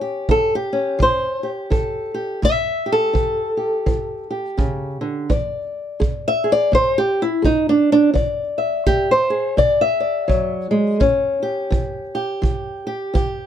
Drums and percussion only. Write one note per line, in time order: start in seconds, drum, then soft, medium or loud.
0.29 kick medium
1.00 kick medium
1.72 kick medium
2.43 kick medium
3.15 kick medium
3.87 kick medium
4.59 kick medium
5.30 kick medium
6.02 kick medium
6.73 kick medium
7.45 kick medium
8.16 kick medium
8.87 kick medium
9.58 kick medium
10.29 kick medium
11.01 kick medium
11.72 kick medium
12.43 kick medium
13.15 kick medium